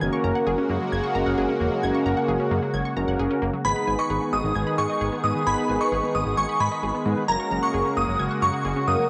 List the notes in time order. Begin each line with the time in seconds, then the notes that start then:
0.01 F#1 C#3 G#3 A#3 C#4 F#4 A#4 G#6
0.13 C#6
0.24 F#1 A#5
0.35 F#5
0.47 F#1 G#4
0.58 C#4
0.69 F#2 A#3
0.81 F#3
0.92 F#1 G#6
1.04 C#6
1.15 F#1 A#3 C#4 F#4 A#4 A#5
1.26 F#1 F#5
1.38 F#1 G#4
1.49 C#4
1.60 E1 A#3
1.72 F#3
1.83 F#1 A#3 C#4 F#4 A#4 G#6
1.94 C#6
2.06 F#1 A#5
2.17 F#5
2.28 F#1 G#4
2.40 C#4
2.51 F#2 A#3
2.63 F#3
2.74 F#1 G#6
2.85 C#6
2.97 F#1 A#3 C#4 F#4 A#4 A#5
3.08 F#1 F#5
3.19 F#1 G#4
3.31 C#4
3.42 F#1 A#3
3.53 F#3
3.65 G#1 D#3 G#3 B3 D#4 G#4 B4 B5 G#6
3.76 B5
3.87 G#1 G#5
3.99 D#5 C#6
4.10 G#1 G#4
4.21 B3
4.33 G#1 G#3 D#6
4.44 G#1 D#3
4.56 G#1 G#6
4.67 B5
4.78 G#2 G#5 C#6
4.90 D#5
5.01 G#1 G#4
5.12 B3
5.24 G#2 G#3 B3 D#4 G#4 B4 D#6
5.35 D#3
5.47 G#1 B3 D#4 G#4 B4 B5 G#6
5.58 B5
5.69 G#1 G#5
5.81 D#5 C#6
5.92 G#1 G#4
6.03 B3
6.15 G#1 G#3 D#6
6.26 G#1 D#3
6.37 G#1 C#6 G#6
6.49 B5
6.60 G#2 G#5 B5
6.72 D#5
6.83 G#1 G#4
6.94 B3
7.06 G#2 G#3 B3 D#4 G#4 B4
7.17 D#3
7.28 F#1 C#3 A#3 C#4 F#4 A#4 A#5 G#6
7.40 C#6
7.51 F#1 A#5
7.63 F#5 C#6
7.74 F#1 G#4
7.85 C#4
7.97 F#1 A#3 D#6
8.08 F#1 F#3
8.19 F#1 G#6
8.31 C#6
8.42 F#2 A#5 C#6
8.54 F#5
8.65 F#1 G#4
8.76 C#4
8.88 F#2 A#3 C#4 F#4 A#4 D#6
8.99 F#3